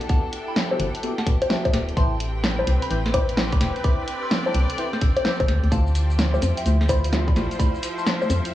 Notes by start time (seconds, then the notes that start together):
Already playing: D4 E4 G4 A4 G5
0.01 closed hi-hat
0.09 B3 F#4 G4 A4 D5 F#5 A5, kick, closed hi-hat
0.33 closed hi-hat
0.48 G5 B5
0.56 snare
0.71 B3 F#4 G4 A4 E5, high bongo
0.80 G1, closed hi-hat
0.95 closed hi-hat
1.03 B3 F#4 G4 A4 D5, closed hi-hat
1.18 F#5 A5, snare
1.27 D1 B3 F#4 G4 A4 D5, kick, closed hi-hat
1.42 closed hi-hat, high bongo
1.50 B3 F#4 G4 A4 D5 E5 G5, snare
1.65 kick, closed hi-hat, high bongo
1.73 D1 B3 F#4 G4 A4 D5, snare, closed hi-hat
1.89 closed hi-hat
1.97 A1 C4 D4 E4 B4 C5 D5 G5 A5 C6, kick, closed hi-hat
2.20 closed hi-hat
2.37 B4
2.44 snare
2.59 E4 B4 C5 D5 A5, high bongo
2.67 C2, closed hi-hat
2.82 G5 B5, closed hi-hat
2.91 A1 E4 B4 C5 D5 G5, closed hi-hat
3.06 snare
3.14 E4 B4 C5 D5 G5 B5 D6, kick, closed hi-hat, high bongo
3.29 closed hi-hat
3.37 E4 B4 C5 D5 G5, snare
3.52 B5 D6, kick, closed hi-hat
3.61 E1 E4 B4 C5 D5 G5, snare, closed hi-hat
3.76 closed hi-hat
3.84 E4 A4 B4 C5 D5 G5 B5 D6, kick, closed hi-hat
4.08 closed hi-hat
4.23 C6 E6
4.31 snare
4.46 E4 B4 C5 D5 A5, high bongo
4.55 C2, closed hi-hat
4.70 closed hi-hat
4.78 E4 B4 C5 D5 G5, closed hi-hat
4.93 E6 G6, snare
5.01 G1, kick, closed hi-hat
5.17 closed hi-hat, high bongo
5.25 E4 B4 C5 D5 G5 E6 G6, snare
5.40 G1, kick, closed hi-hat, high bongo
5.48 D2 F3 E4 F4 G4 C5, snare, closed hi-hat
5.63 D2, closed hi-hat
5.72 D2 A3 E4 F4 G4 C5 F5 A5, kick, closed hi-hat, shaker
5.87 C5, shaker
5.95 closed hi-hat, shaker
6.09 E5, shaker
6.19 snare, shaker
6.34 A3 E4 F4 G4 D5, high bongo, shaker
6.42 F2, closed hi-hat, shaker
6.57 E5 G5, closed hi-hat, shaker
6.66 D2 A3 E4 F4 G4 C5, closed hi-hat, shaker
6.81 snare, shaker
6.89 A3 E4 F4 G4 C5 D5 B5, kick, closed hi-hat, high bongo, shaker
7.04 closed hi-hat, shaker
7.12 A3 E4 F4 G4 C5, snare, shaker
7.28 D5 B5, kick, closed hi-hat, shaker
7.36 A1 A3 E4 F4 G4 A4 C5, snare, closed hi-hat, shaker
7.51 closed hi-hat, shaker
7.59 A3 E4 F4 G4 C5 D5 B5, kick, closed hi-hat, shaker
7.75 shaker
7.83 closed hi-hat, shaker
7.98 A5 C6, shaker
8.06 snare, shaker
8.21 A3 E4 F4 G4 D5, high bongo, shaker
8.30 F2, closed hi-hat, shaker
8.45 closed hi-hat, shaker